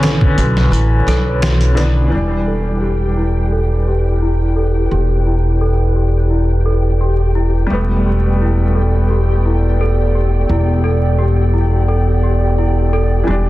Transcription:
Already playing: upright bass B1, upright piano D3 B3 C#4, celesta E4 F#4 A4, synth texture B4
0.03 celesta A4, snare, closed hi-hat
0.21 kick
0.38 upright bass B1, celesta F#4, closed hi-hat
0.57 snare
0.72 upright bass A1, celesta E4, closed hi-hat
1.07 upright bass B1, celesta A4, snare, closed hi-hat
1.42 celesta F#4, snare, closed hi-hat
1.61 closed hi-hat
1.75 upright piano D3 B3 D4, celesta E4, snare, closed hi-hat
2.08 upright bass E1, upright piano E3 G3, celesta E4, ambient pad E4 D5
2.12 upright piano D4, synth texture G4, ambient pad B4 G5
2.47 celesta A4
2.81 celesta G4
3.17 celesta E4
3.52 celesta A4
3.87 celesta G4
4.22 celesta E4
4.56 celesta A4
4.91 upright bass E1, celesta G4
5.27 celesta E4
5.61 celesta A4
5.96 celesta G4
6.31 celesta E4
6.66 celesta A4
7.01 celesta G4
7.35 celesta E4
7.67 upright bass E1, upright piano G3 A3
7.71 ambient pad B3 A4 G5, upright piano B3, celesta A4
8.06 celesta G4
8.41 celesta E4
8.75 celesta A4
9.10 celesta G4
9.46 celesta E4
9.81 celesta A4
10.15 celesta G4
10.49 upright bass E1, celesta E4
10.84 celesta A4
11.18 celesta G4
11.53 celesta E4
11.88 celesta A4
12.23 celesta G4
12.58 celesta E4
12.93 celesta A4
13.24 upright bass E1, upright piano E3 G3, ambient pad E4
13.28 upright piano D4, celesta G4

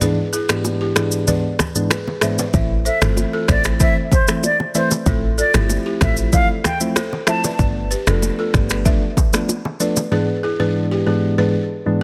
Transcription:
0.01 synth keys G#2 E3 G#3 B3 D4, balafon G#4 B4, low conga, shaker
0.33 balafon E4 G#4, shaker
0.49 synth keys G#2 E3 G#3 B3 D4, balafon E4 G4, finger snap, cross-stick, shaker
0.64 high bongo, shaker
0.81 balafon E4 G4
0.96 synth keys G#2 E3 G#3 B3 D4, balafon E4 G#4, finger snap, cross-stick, shaker
1.12 shaker
1.27 synth keys G#2 E3 G#3 B3 D4, balafon B4 D5, low conga, shaker
1.59 finger snap, cross-stick, low bongo, low conga, shaker
1.75 synth keys G#2 E3 G#3 B3 D4, shaker
1.91 balafon G#4 B4, finger snap, cross-stick, high bongo, shaker
2.08 low bongo
2.21 synth keys G#2 E3 G#3 B3 D4, balafon C5 E5, finger snap, cross-stick, shaker
2.39 balafon B4 D5, low bongo, shaker
2.54 log drum bass A1, synth keys E3 A3 C4 E4, balafon C5 E5, kick, low conga, shaker
2.85 balafon A4 C5, flute E5, shaker
3.02 log drum bass G1, synth keys E3 A3 C4 E4, balafon F4 A4, finger snap, cross-stick, shaker
3.17 high bongo, shaker
3.33 balafon F4 A4
3.48 log drum bass A1, synth keys E3 A3 C4 E4, balafon A4 C5, flute D5, finger snap, kick, cross-stick, shaker
3.64 finger snap, cross-stick, shaker
3.80 synth keys E3 A3 C4 E4, balafon C5 E5, flute E5, kick, low conga, shaker
4.12 flute C5, kick, low bongo, low conga, shaker
4.28 synth keys E3 A3 C4 E4, finger snap, cross-stick, shaker
4.43 flute D5, high bongo, shaker
4.60 low bongo
4.75 synth keys E3 A3 C4 E4, balafon B4 D5, flute C5, shaker
4.91 low bongo, shaker
5.06 log drum bass A1, synth keys F3 A3 C4 E4, balafon A4 C5, kick, low conga, shaker
5.38 balafon F4 A4, flute D5, shaker
5.54 log drum bass G1, synth keys F3 A3 C4 E4, balafon E4 G4, finger snap, cross-stick, shaker
5.69 high bongo, shaker
5.86 balafon E4 G4
6.01 log drum bass A1, synth keys F3 A3 C4 E4, balafon F4 A4, flute E5, finger snap, kick, cross-stick, shaker
6.17 shaker
6.32 synth keys F3 A3 C4 E4, balafon A4 D5, flute F5, kick, low conga, shaker
6.64 flute G5, finger snap, cross-stick, low bongo, low conga, shaker
6.80 synth keys F3 A3 C4 E4, shaker
6.96 balafon A4 C5, finger snap, cross-stick, high bongo, shaker
7.13 low bongo
7.27 synth keys F3 A3 C4 E4, balafon C5 E5, flute A5, finger snap, cross-stick, shaker
7.44 balafon B4 D5, low bongo, shaker
7.59 log drum bass G1, synth keys F3 A3 B3 D4, balafon B4 D5, kick, low conga, shaker
7.91 balafon G4 B4, shaker
8.07 log drum bass F1, synth keys F3 A3 B3 D4, balafon F4 A4, finger snap, cross-stick, shaker
8.22 high bongo, shaker
8.39 balafon F4 A4
8.54 log drum bass G1, synth keys F3 A3 B3 D4, balafon G4 B4, finger snap, kick, cross-stick, shaker
8.70 finger snap, cross-stick, shaker
8.85 synth keys F3 A3 B3 D4, balafon B4 E5, kick, low conga, shaker
9.17 kick, low bongo, low conga, shaker
9.33 synth keys F3 A3 B3 D4, finger snap, cross-stick, shaker
9.49 high bongo, shaker
9.65 low bongo
9.80 synth keys F3 A3 B3 D4, balafon B4 D5, shaker
9.97 low bongo, shaker
10.11 synth keys G#2 E3 G#3 B3 D4, balafon G#4 B4
10.43 balafon E4 G#4
10.59 synth keys G#2 E3 G#3 B3 D4, balafon G#4 B4
10.91 balafon E4 G4
11.06 synth keys G#2 E3 G#3 B3 D4, balafon E4 G#4
11.38 synth keys G#2 E3 G#3 B3 D4, balafon G#4 B4
11.86 synth keys G#2 E3 G#3 B3 D4

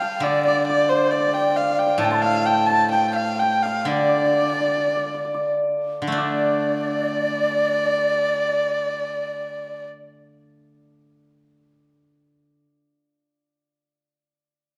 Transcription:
Already playing: guzheng G3, hammered dulcimer G5 A5
0.00 erhu F5, hammered dulcimer F5, xiao F5
0.20 guzheng D3, erhu D5, xiao F5
0.26 hammered dulcimer D5, xiao D5
0.46 erhu D5, hammered dulcimer D5
0.68 erhu D5, hammered dulcimer D5
0.89 xiao C5, erhu C5, hammered dulcimer C5
1.11 erhu D5, hammered dulcimer D5, xiao F5
1.15 xiao D5
1.20 hammered dulcimer D5
1.27 hammered dulcimer D5
1.34 hammered dulcimer D5, erhu G5
1.42 hammered dulcimer D5
1.49 hammered dulcimer D5
1.55 hammered dulcimer D5, erhu F5, xiao F5
1.62 hammered dulcimer D5
1.70 hammered dulcimer D5
1.78 hammered dulcimer D5, erhu G5
1.87 hammered dulcimer D5
1.98 guzheng A2, erhu A5, hammered dulcimer A5, xiao A5
2.04 erhu G5
2.11 hammered dulcimer A5, erhu A5, xiao C6
2.15 xiao A5
2.22 erhu F5, hammered dulcimer F5
2.46 erhu G5, hammered dulcimer G5
2.67 erhu A5, hammered dulcimer A5
2.90 erhu G5, hammered dulcimer G5, xiao A5
2.95 xiao G5
3.13 xiao F5, erhu F5
3.36 xiao G5, erhu G5
3.42 hammered dulcimer G5
3.62 erhu F5, hammered dulcimer F5
3.85 guzheng D3, xiao D5, erhu D5
3.91 hammered dulcimer D5
3.99 hammered dulcimer D5
4.09 hammered dulcimer D5
4.17 hammered dulcimer D5
4.26 hammered dulcimer D5
4.33 hammered dulcimer D5
4.42 hammered dulcimer D5
4.52 hammered dulcimer D5
4.60 hammered dulcimer D5
4.68 hammered dulcimer D5
4.77 hammered dulcimer D5
4.88 hammered dulcimer D5
4.96 hammered dulcimer D5
5.06 hammered dulcimer D5
5.14 hammered dulcimer D5
5.25 hammered dulcimer D5
5.34 hammered dulcimer D5
6.02 guzheng D3
6.07 guzheng A3
6.12 guzheng D4, xiao D5, erhu D5
6.18 hammered dulcimer D5

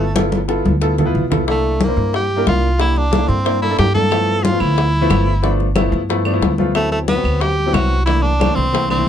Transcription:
Already playing: upright bass G1, tenor saxophone A3
0.00 high conga
0.15 grand piano B3 E4 F4 A4, high bongo, high conga
0.32 high bongo, high conga
0.48 grand piano B3 E4 F4 A4, high bongo
0.65 upright bass D2, high bongo, high conga
0.81 grand piano B3 E4 F4 A4, high bongo
0.98 grand piano B3 E4 F4 A4, high bongo, low conga
1.05 grand piano B3 E4 F4 B4
1.15 upright bass C2, low conga
1.30 grand piano B3 E4 F4 A4, low bongo, low conga
1.47 tenor saxophone A3, grand piano A#3 D4 E4 A4, high bongo, high conga
1.64 high conga
1.81 tenor saxophone A#3, high bongo, high conga
1.88 grand piano A#3 D4 E4 C5
1.97 upright bass G2, high conga
2.14 tenor saxophone G4, high bongo, high conga
2.30 high conga
2.36 grand piano A#3 D4 E4 A#4
2.47 upright bass C2, tenor saxophone F4, high bongo, low bongo, high conga
2.63 high conga
2.79 grand piano A#3 D4 E4 G4, tenor saxophone E4, high bongo, high conga
2.96 tenor saxophone D4, high bongo, high conga
3.11 grand piano A#3 D4 E4 A4, high bongo, high conga
3.28 upright bass G2, tenor saxophone C4, high bongo, high conga
3.44 grand piano A#3 D4 E4 C5, high bongo, high conga
3.62 grand piano A#3 D4 E4 A4, tenor saxophone E4, high bongo, high conga
3.69 grand piano A#3 D4 E4 A4
3.79 upright bass G2, tenor saxophone G4, high bongo, low bongo, high conga
3.94 grand piano A#3 D4 E4 A4, tenor saxophone A4, high conga
4.11 grand piano F3 A3 B3 E4, high bongo, high conga, claves
4.28 high conga
4.43 tenor saxophone F4, high bongo, high conga
4.52 grand piano F3 A3 B3 F4
4.60 upright bass D2, tenor saxophone E4, high conga, claves
4.77 high bongo, high conga
4.93 high conga
5.01 grand piano F3 A3 B3 E4
5.10 upright bass G1, high bongo, low bongo, high conga, claves
5.27 high conga
5.42 grand piano F3 A3 B3 D4, high bongo, high conga
5.59 high bongo, high conga
5.75 grand piano F3 A3 B3 E4, high bongo, high conga, claves
5.92 upright bass G2, high bongo, high conga
6.09 grand piano F3 A3 B3 E4, high bongo, high conga
6.25 grand piano F3 A3 B3 D4, high bongo, high conga, claves
6.32 grand piano F3 A3 B3 E4
6.41 upright bass D2, high bongo, low bongo, high conga
6.58 grand piano F3 A3 B3 F4, high conga
6.75 grand piano F#3 B3 C4 E4, tenor saxophone A3, high bongo, high conga, claves
6.91 tenor saxophone A3, high conga
7.08 tenor saxophone B3, high bongo, high conga
7.16 grand piano F#3 B3 C4 F#4
7.24 upright bass D2, high conga, claves
7.41 tenor saxophone G4, high bongo, high conga
7.58 high conga
7.66 grand piano F#3 B3 C4 E4
7.74 upright bass C2, tenor saxophone F#4, high bongo, low bongo, high conga, claves
7.92 high conga
8.06 grand piano E3 A3 A#3 D4, tenor saxophone E4, high bongo, high conga
8.22 tenor saxophone D4, high bongo, high conga
8.39 grand piano E3 A3 A#3 D4, high bongo, high conga, claves
8.55 upright bass C2, tenor saxophone C4, high bongo, high conga
8.73 grand piano E3 A3 A#3 C4, high bongo, high conga
8.89 grand piano E3 A3 A#3 D4, tenor saxophone C4, high bongo, high conga, claves
8.98 grand piano E3 A3 A#3 E4

